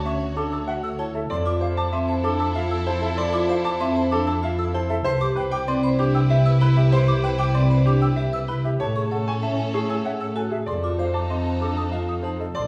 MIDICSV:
0, 0, Header, 1, 6, 480
1, 0, Start_track
1, 0, Tempo, 312500
1, 2001, Time_signature, 6, 2, 24, 8
1, 19464, End_track
2, 0, Start_track
2, 0, Title_t, "Flute"
2, 0, Program_c, 0, 73
2, 88, Note_on_c, 0, 85, 69
2, 180, Note_off_c, 0, 85, 0
2, 562, Note_on_c, 0, 86, 81
2, 654, Note_off_c, 0, 86, 0
2, 804, Note_on_c, 0, 88, 69
2, 896, Note_off_c, 0, 88, 0
2, 1040, Note_on_c, 0, 76, 80
2, 1132, Note_off_c, 0, 76, 0
2, 1277, Note_on_c, 0, 88, 91
2, 1369, Note_off_c, 0, 88, 0
2, 1520, Note_on_c, 0, 81, 76
2, 1613, Note_off_c, 0, 81, 0
2, 1756, Note_on_c, 0, 76, 75
2, 1848, Note_off_c, 0, 76, 0
2, 1998, Note_on_c, 0, 84, 94
2, 2090, Note_off_c, 0, 84, 0
2, 2244, Note_on_c, 0, 86, 66
2, 2336, Note_off_c, 0, 86, 0
2, 2480, Note_on_c, 0, 77, 73
2, 2572, Note_off_c, 0, 77, 0
2, 2721, Note_on_c, 0, 86, 82
2, 2813, Note_off_c, 0, 86, 0
2, 2958, Note_on_c, 0, 84, 71
2, 3051, Note_off_c, 0, 84, 0
2, 3203, Note_on_c, 0, 81, 83
2, 3295, Note_off_c, 0, 81, 0
2, 3443, Note_on_c, 0, 86, 89
2, 3535, Note_off_c, 0, 86, 0
2, 3683, Note_on_c, 0, 88, 82
2, 3775, Note_off_c, 0, 88, 0
2, 3920, Note_on_c, 0, 76, 84
2, 4012, Note_off_c, 0, 76, 0
2, 4159, Note_on_c, 0, 88, 89
2, 4251, Note_off_c, 0, 88, 0
2, 4396, Note_on_c, 0, 81, 80
2, 4488, Note_off_c, 0, 81, 0
2, 4632, Note_on_c, 0, 76, 90
2, 4725, Note_off_c, 0, 76, 0
2, 4872, Note_on_c, 0, 84, 102
2, 4964, Note_off_c, 0, 84, 0
2, 5114, Note_on_c, 0, 86, 76
2, 5206, Note_off_c, 0, 86, 0
2, 5358, Note_on_c, 0, 77, 93
2, 5450, Note_off_c, 0, 77, 0
2, 5597, Note_on_c, 0, 86, 96
2, 5689, Note_off_c, 0, 86, 0
2, 5840, Note_on_c, 0, 84, 87
2, 5932, Note_off_c, 0, 84, 0
2, 6079, Note_on_c, 0, 81, 86
2, 6172, Note_off_c, 0, 81, 0
2, 6314, Note_on_c, 0, 86, 93
2, 6407, Note_off_c, 0, 86, 0
2, 6556, Note_on_c, 0, 88, 83
2, 6648, Note_off_c, 0, 88, 0
2, 6805, Note_on_c, 0, 76, 88
2, 6897, Note_off_c, 0, 76, 0
2, 7045, Note_on_c, 0, 88, 100
2, 7137, Note_off_c, 0, 88, 0
2, 7286, Note_on_c, 0, 81, 89
2, 7378, Note_off_c, 0, 81, 0
2, 7515, Note_on_c, 0, 76, 92
2, 7608, Note_off_c, 0, 76, 0
2, 7758, Note_on_c, 0, 84, 113
2, 7851, Note_off_c, 0, 84, 0
2, 8003, Note_on_c, 0, 86, 84
2, 8095, Note_off_c, 0, 86, 0
2, 8242, Note_on_c, 0, 79, 85
2, 8334, Note_off_c, 0, 79, 0
2, 8481, Note_on_c, 0, 86, 97
2, 8574, Note_off_c, 0, 86, 0
2, 8722, Note_on_c, 0, 84, 86
2, 8814, Note_off_c, 0, 84, 0
2, 8957, Note_on_c, 0, 83, 89
2, 9049, Note_off_c, 0, 83, 0
2, 9199, Note_on_c, 0, 86, 96
2, 9291, Note_off_c, 0, 86, 0
2, 9438, Note_on_c, 0, 88, 89
2, 9530, Note_off_c, 0, 88, 0
2, 9680, Note_on_c, 0, 76, 92
2, 9772, Note_off_c, 0, 76, 0
2, 9914, Note_on_c, 0, 88, 103
2, 10006, Note_off_c, 0, 88, 0
2, 10152, Note_on_c, 0, 83, 92
2, 10245, Note_off_c, 0, 83, 0
2, 10391, Note_on_c, 0, 76, 88
2, 10483, Note_off_c, 0, 76, 0
2, 10633, Note_on_c, 0, 84, 108
2, 10725, Note_off_c, 0, 84, 0
2, 10871, Note_on_c, 0, 86, 75
2, 10964, Note_off_c, 0, 86, 0
2, 11110, Note_on_c, 0, 79, 89
2, 11202, Note_off_c, 0, 79, 0
2, 11349, Note_on_c, 0, 86, 103
2, 11441, Note_off_c, 0, 86, 0
2, 11592, Note_on_c, 0, 84, 77
2, 11684, Note_off_c, 0, 84, 0
2, 11829, Note_on_c, 0, 83, 85
2, 11922, Note_off_c, 0, 83, 0
2, 12081, Note_on_c, 0, 86, 93
2, 12173, Note_off_c, 0, 86, 0
2, 12316, Note_on_c, 0, 88, 87
2, 12409, Note_off_c, 0, 88, 0
2, 12562, Note_on_c, 0, 76, 82
2, 12654, Note_off_c, 0, 76, 0
2, 12799, Note_on_c, 0, 88, 100
2, 12891, Note_off_c, 0, 88, 0
2, 13036, Note_on_c, 0, 83, 85
2, 13128, Note_off_c, 0, 83, 0
2, 13281, Note_on_c, 0, 76, 86
2, 13373, Note_off_c, 0, 76, 0
2, 13520, Note_on_c, 0, 81, 93
2, 13613, Note_off_c, 0, 81, 0
2, 13761, Note_on_c, 0, 85, 70
2, 13853, Note_off_c, 0, 85, 0
2, 14001, Note_on_c, 0, 78, 78
2, 14093, Note_off_c, 0, 78, 0
2, 14239, Note_on_c, 0, 85, 86
2, 14331, Note_off_c, 0, 85, 0
2, 14476, Note_on_c, 0, 81, 71
2, 14568, Note_off_c, 0, 81, 0
2, 14723, Note_on_c, 0, 80, 69
2, 14815, Note_off_c, 0, 80, 0
2, 14958, Note_on_c, 0, 85, 89
2, 15050, Note_off_c, 0, 85, 0
2, 15202, Note_on_c, 0, 88, 76
2, 15294, Note_off_c, 0, 88, 0
2, 15444, Note_on_c, 0, 76, 76
2, 15536, Note_off_c, 0, 76, 0
2, 15678, Note_on_c, 0, 88, 86
2, 15770, Note_off_c, 0, 88, 0
2, 15917, Note_on_c, 0, 80, 71
2, 16009, Note_off_c, 0, 80, 0
2, 16155, Note_on_c, 0, 76, 73
2, 16247, Note_off_c, 0, 76, 0
2, 16392, Note_on_c, 0, 84, 82
2, 16484, Note_off_c, 0, 84, 0
2, 16636, Note_on_c, 0, 86, 65
2, 16728, Note_off_c, 0, 86, 0
2, 16875, Note_on_c, 0, 77, 68
2, 16968, Note_off_c, 0, 77, 0
2, 17114, Note_on_c, 0, 86, 73
2, 17207, Note_off_c, 0, 86, 0
2, 17360, Note_on_c, 0, 84, 68
2, 17452, Note_off_c, 0, 84, 0
2, 17597, Note_on_c, 0, 81, 62
2, 17689, Note_off_c, 0, 81, 0
2, 17833, Note_on_c, 0, 86, 81
2, 17925, Note_off_c, 0, 86, 0
2, 18079, Note_on_c, 0, 87, 68
2, 18171, Note_off_c, 0, 87, 0
2, 18319, Note_on_c, 0, 75, 65
2, 18411, Note_off_c, 0, 75, 0
2, 18560, Note_on_c, 0, 87, 72
2, 18652, Note_off_c, 0, 87, 0
2, 18804, Note_on_c, 0, 81, 69
2, 18896, Note_off_c, 0, 81, 0
2, 19049, Note_on_c, 0, 75, 73
2, 19141, Note_off_c, 0, 75, 0
2, 19285, Note_on_c, 0, 84, 97
2, 19377, Note_off_c, 0, 84, 0
2, 19464, End_track
3, 0, Start_track
3, 0, Title_t, "Grand piano"
3, 0, Program_c, 1, 0
3, 0, Note_on_c, 1, 81, 82
3, 85, Note_on_c, 1, 76, 70
3, 156, Note_off_c, 1, 81, 0
3, 394, Note_off_c, 1, 76, 0
3, 561, Note_on_c, 1, 69, 86
3, 810, Note_on_c, 1, 81, 67
3, 873, Note_off_c, 1, 69, 0
3, 1037, Note_on_c, 1, 78, 79
3, 1116, Note_off_c, 1, 81, 0
3, 1352, Note_off_c, 1, 78, 0
3, 1515, Note_on_c, 1, 73, 75
3, 1760, Note_on_c, 1, 69, 73
3, 1831, Note_off_c, 1, 73, 0
3, 1996, Note_on_c, 1, 74, 92
3, 2073, Note_off_c, 1, 69, 0
3, 2311, Note_off_c, 1, 74, 0
3, 2470, Note_on_c, 1, 72, 67
3, 2723, Note_on_c, 1, 81, 93
3, 2789, Note_off_c, 1, 72, 0
3, 2957, Note_on_c, 1, 76, 76
3, 3034, Note_off_c, 1, 81, 0
3, 3272, Note_off_c, 1, 76, 0
3, 3437, Note_on_c, 1, 69, 89
3, 3679, Note_on_c, 1, 81, 74
3, 3752, Note_off_c, 1, 69, 0
3, 3926, Note_on_c, 1, 77, 76
3, 3992, Note_off_c, 1, 81, 0
3, 4235, Note_off_c, 1, 77, 0
3, 4404, Note_on_c, 1, 72, 86
3, 4636, Note_on_c, 1, 69, 88
3, 4714, Note_off_c, 1, 72, 0
3, 4878, Note_on_c, 1, 74, 103
3, 4951, Note_off_c, 1, 69, 0
3, 5192, Note_off_c, 1, 74, 0
3, 5358, Note_on_c, 1, 72, 71
3, 5601, Note_on_c, 1, 81, 96
3, 5672, Note_off_c, 1, 72, 0
3, 5846, Note_on_c, 1, 76, 86
3, 5913, Note_off_c, 1, 81, 0
3, 6155, Note_off_c, 1, 76, 0
3, 6332, Note_on_c, 1, 69, 105
3, 6562, Note_on_c, 1, 81, 80
3, 6637, Note_off_c, 1, 69, 0
3, 6814, Note_on_c, 1, 77, 85
3, 6873, Note_off_c, 1, 81, 0
3, 7117, Note_off_c, 1, 77, 0
3, 7284, Note_on_c, 1, 72, 82
3, 7528, Note_on_c, 1, 69, 92
3, 7594, Note_off_c, 1, 72, 0
3, 7748, Note_on_c, 1, 72, 107
3, 7835, Note_off_c, 1, 69, 0
3, 8068, Note_off_c, 1, 72, 0
3, 8226, Note_on_c, 1, 71, 83
3, 8469, Note_on_c, 1, 79, 108
3, 8548, Note_off_c, 1, 71, 0
3, 8721, Note_on_c, 1, 74, 87
3, 8789, Note_off_c, 1, 79, 0
3, 9033, Note_off_c, 1, 74, 0
3, 9198, Note_on_c, 1, 67, 106
3, 9439, Note_on_c, 1, 79, 84
3, 9512, Note_off_c, 1, 67, 0
3, 9683, Note_on_c, 1, 76, 87
3, 9752, Note_off_c, 1, 79, 0
3, 9994, Note_off_c, 1, 76, 0
3, 10166, Note_on_c, 1, 71, 88
3, 10391, Note_on_c, 1, 67, 84
3, 10475, Note_off_c, 1, 71, 0
3, 10635, Note_on_c, 1, 72, 106
3, 10709, Note_off_c, 1, 67, 0
3, 10951, Note_off_c, 1, 72, 0
3, 11117, Note_on_c, 1, 71, 80
3, 11340, Note_on_c, 1, 79, 103
3, 11432, Note_off_c, 1, 71, 0
3, 11586, Note_on_c, 1, 74, 81
3, 11666, Note_off_c, 1, 79, 0
3, 11908, Note_off_c, 1, 74, 0
3, 12064, Note_on_c, 1, 67, 100
3, 12298, Note_on_c, 1, 79, 80
3, 12387, Note_off_c, 1, 67, 0
3, 12537, Note_on_c, 1, 76, 84
3, 12625, Note_off_c, 1, 79, 0
3, 12865, Note_off_c, 1, 76, 0
3, 13030, Note_on_c, 1, 71, 77
3, 13275, Note_on_c, 1, 67, 80
3, 13349, Note_off_c, 1, 71, 0
3, 13514, Note_on_c, 1, 73, 99
3, 13591, Note_off_c, 1, 67, 0
3, 13830, Note_off_c, 1, 73, 0
3, 13996, Note_on_c, 1, 69, 75
3, 14249, Note_on_c, 1, 80, 89
3, 14311, Note_off_c, 1, 69, 0
3, 14479, Note_on_c, 1, 76, 71
3, 14556, Note_off_c, 1, 80, 0
3, 14792, Note_off_c, 1, 76, 0
3, 14961, Note_on_c, 1, 68, 87
3, 15192, Note_on_c, 1, 80, 71
3, 15273, Note_off_c, 1, 68, 0
3, 15439, Note_on_c, 1, 78, 71
3, 15510, Note_off_c, 1, 80, 0
3, 15752, Note_off_c, 1, 78, 0
3, 15908, Note_on_c, 1, 69, 70
3, 16140, Note_on_c, 1, 68, 68
3, 16228, Note_off_c, 1, 69, 0
3, 16378, Note_on_c, 1, 74, 80
3, 16465, Note_off_c, 1, 68, 0
3, 16705, Note_off_c, 1, 74, 0
3, 16873, Note_on_c, 1, 72, 60
3, 17108, Note_on_c, 1, 81, 78
3, 17190, Note_off_c, 1, 72, 0
3, 17356, Note_on_c, 1, 75, 65
3, 17428, Note_off_c, 1, 81, 0
3, 17671, Note_off_c, 1, 75, 0
3, 17838, Note_on_c, 1, 69, 77
3, 18067, Note_on_c, 1, 81, 65
3, 18152, Note_off_c, 1, 69, 0
3, 18305, Note_on_c, 1, 77, 68
3, 18388, Note_off_c, 1, 81, 0
3, 18627, Note_off_c, 1, 77, 0
3, 18779, Note_on_c, 1, 72, 62
3, 19039, Note_on_c, 1, 69, 66
3, 19105, Note_off_c, 1, 72, 0
3, 19272, Note_on_c, 1, 74, 99
3, 19352, Note_off_c, 1, 69, 0
3, 19464, Note_off_c, 1, 74, 0
3, 19464, End_track
4, 0, Start_track
4, 0, Title_t, "Violin section"
4, 0, Program_c, 2, 48
4, 0, Note_on_c, 2, 66, 67
4, 0, Note_on_c, 2, 73, 68
4, 1703, Note_off_c, 2, 66, 0
4, 1704, Note_off_c, 2, 73, 0
4, 1990, Note_on_c, 2, 64, 80
4, 1995, Note_on_c, 2, 69, 78
4, 7454, Note_off_c, 2, 64, 0
4, 7457, Note_off_c, 2, 69, 0
4, 7766, Note_on_c, 2, 64, 94
4, 7767, Note_on_c, 2, 71, 84
4, 13222, Note_off_c, 2, 64, 0
4, 13223, Note_off_c, 2, 71, 0
4, 13513, Note_on_c, 2, 61, 85
4, 13515, Note_on_c, 2, 69, 82
4, 16095, Note_off_c, 2, 61, 0
4, 16096, Note_off_c, 2, 69, 0
4, 16382, Note_on_c, 2, 69, 68
4, 16383, Note_on_c, 2, 63, 67
4, 18970, Note_off_c, 2, 69, 0
4, 18971, Note_off_c, 2, 63, 0
4, 19263, Note_on_c, 2, 62, 84
4, 19264, Note_on_c, 2, 72, 82
4, 19464, Note_off_c, 2, 62, 0
4, 19464, Note_off_c, 2, 72, 0
4, 19464, End_track
5, 0, Start_track
5, 0, Title_t, "Vibraphone"
5, 0, Program_c, 3, 11
5, 84, Note_on_c, 3, 61, 86
5, 313, Note_on_c, 3, 73, 69
5, 394, Note_off_c, 3, 61, 0
5, 559, Note_on_c, 3, 62, 76
5, 630, Note_off_c, 3, 73, 0
5, 872, Note_off_c, 3, 62, 0
5, 1040, Note_on_c, 3, 66, 72
5, 1287, Note_on_c, 3, 69, 72
5, 1352, Note_off_c, 3, 66, 0
5, 1522, Note_on_c, 3, 64, 82
5, 1595, Note_off_c, 3, 69, 0
5, 1833, Note_off_c, 3, 64, 0
5, 1998, Note_on_c, 3, 69, 79
5, 2235, Note_on_c, 3, 65, 85
5, 2312, Note_off_c, 3, 69, 0
5, 2476, Note_on_c, 3, 72, 76
5, 2551, Note_off_c, 3, 65, 0
5, 2791, Note_off_c, 3, 72, 0
5, 2962, Note_on_c, 3, 60, 92
5, 3201, Note_on_c, 3, 72, 80
5, 3273, Note_off_c, 3, 60, 0
5, 3444, Note_on_c, 3, 62, 81
5, 3513, Note_off_c, 3, 72, 0
5, 3754, Note_off_c, 3, 62, 0
5, 3921, Note_on_c, 3, 65, 81
5, 4165, Note_on_c, 3, 69, 76
5, 4233, Note_off_c, 3, 65, 0
5, 4406, Note_on_c, 3, 64, 86
5, 4474, Note_off_c, 3, 69, 0
5, 4715, Note_off_c, 3, 64, 0
5, 4888, Note_on_c, 3, 69, 86
5, 5118, Note_on_c, 3, 65, 110
5, 5195, Note_off_c, 3, 69, 0
5, 5362, Note_on_c, 3, 72, 87
5, 5432, Note_off_c, 3, 65, 0
5, 5673, Note_off_c, 3, 72, 0
5, 5850, Note_on_c, 3, 60, 104
5, 6086, Note_on_c, 3, 72, 83
5, 6156, Note_off_c, 3, 60, 0
5, 6331, Note_on_c, 3, 62, 89
5, 6395, Note_off_c, 3, 72, 0
5, 6636, Note_off_c, 3, 62, 0
5, 6799, Note_on_c, 3, 65, 88
5, 7047, Note_on_c, 3, 69, 93
5, 7112, Note_off_c, 3, 65, 0
5, 7291, Note_on_c, 3, 64, 95
5, 7355, Note_off_c, 3, 69, 0
5, 7596, Note_off_c, 3, 64, 0
5, 7764, Note_on_c, 3, 71, 94
5, 8005, Note_on_c, 3, 67, 114
5, 8074, Note_off_c, 3, 71, 0
5, 8247, Note_on_c, 3, 72, 88
5, 8314, Note_off_c, 3, 67, 0
5, 8555, Note_off_c, 3, 72, 0
5, 8728, Note_on_c, 3, 60, 114
5, 8961, Note_on_c, 3, 72, 92
5, 9036, Note_off_c, 3, 60, 0
5, 9204, Note_on_c, 3, 62, 92
5, 9273, Note_off_c, 3, 72, 0
5, 9514, Note_off_c, 3, 62, 0
5, 9680, Note_on_c, 3, 67, 90
5, 9915, Note_on_c, 3, 71, 87
5, 9993, Note_off_c, 3, 67, 0
5, 10160, Note_on_c, 3, 64, 100
5, 10231, Note_off_c, 3, 71, 0
5, 10473, Note_off_c, 3, 64, 0
5, 10634, Note_on_c, 3, 71, 96
5, 10880, Note_on_c, 3, 67, 107
5, 10950, Note_off_c, 3, 71, 0
5, 11122, Note_on_c, 3, 72, 86
5, 11193, Note_off_c, 3, 67, 0
5, 11433, Note_off_c, 3, 72, 0
5, 11602, Note_on_c, 3, 60, 100
5, 11839, Note_on_c, 3, 72, 81
5, 11913, Note_off_c, 3, 60, 0
5, 12075, Note_on_c, 3, 62, 85
5, 12152, Note_off_c, 3, 72, 0
5, 12391, Note_off_c, 3, 62, 0
5, 12557, Note_on_c, 3, 67, 78
5, 12798, Note_on_c, 3, 71, 87
5, 12872, Note_off_c, 3, 67, 0
5, 13032, Note_on_c, 3, 64, 92
5, 13112, Note_off_c, 3, 71, 0
5, 13350, Note_off_c, 3, 64, 0
5, 13520, Note_on_c, 3, 69, 80
5, 13758, Note_on_c, 3, 68, 90
5, 13833, Note_off_c, 3, 69, 0
5, 13997, Note_on_c, 3, 73, 79
5, 14072, Note_off_c, 3, 68, 0
5, 14312, Note_off_c, 3, 73, 0
5, 14479, Note_on_c, 3, 61, 90
5, 14717, Note_on_c, 3, 73, 73
5, 14792, Note_off_c, 3, 61, 0
5, 14958, Note_on_c, 3, 64, 73
5, 15032, Note_off_c, 3, 73, 0
5, 15272, Note_off_c, 3, 64, 0
5, 15431, Note_on_c, 3, 68, 71
5, 15675, Note_on_c, 3, 69, 72
5, 15749, Note_off_c, 3, 68, 0
5, 15908, Note_on_c, 3, 66, 78
5, 15991, Note_off_c, 3, 69, 0
5, 16228, Note_off_c, 3, 66, 0
5, 16402, Note_on_c, 3, 69, 74
5, 16647, Note_on_c, 3, 65, 80
5, 16713, Note_off_c, 3, 69, 0
5, 16885, Note_on_c, 3, 72, 69
5, 16955, Note_off_c, 3, 65, 0
5, 17194, Note_off_c, 3, 72, 0
5, 17360, Note_on_c, 3, 60, 80
5, 17606, Note_on_c, 3, 72, 64
5, 17673, Note_off_c, 3, 60, 0
5, 17848, Note_on_c, 3, 62, 66
5, 17915, Note_off_c, 3, 72, 0
5, 18155, Note_off_c, 3, 62, 0
5, 18321, Note_on_c, 3, 65, 70
5, 18571, Note_on_c, 3, 69, 68
5, 18633, Note_off_c, 3, 65, 0
5, 18801, Note_on_c, 3, 63, 69
5, 18877, Note_off_c, 3, 69, 0
5, 19113, Note_off_c, 3, 63, 0
5, 19464, End_track
6, 0, Start_track
6, 0, Title_t, "Double bass section"
6, 0, Program_c, 4, 48
6, 0, Note_on_c, 4, 38, 65
6, 1845, Note_off_c, 4, 38, 0
6, 1997, Note_on_c, 4, 41, 72
6, 7602, Note_off_c, 4, 41, 0
6, 7754, Note_on_c, 4, 36, 83
6, 13360, Note_off_c, 4, 36, 0
6, 13505, Note_on_c, 4, 45, 74
6, 16235, Note_off_c, 4, 45, 0
6, 16401, Note_on_c, 4, 41, 71
6, 19124, Note_off_c, 4, 41, 0
6, 19279, Note_on_c, 4, 34, 81
6, 19464, Note_off_c, 4, 34, 0
6, 19464, End_track
0, 0, End_of_file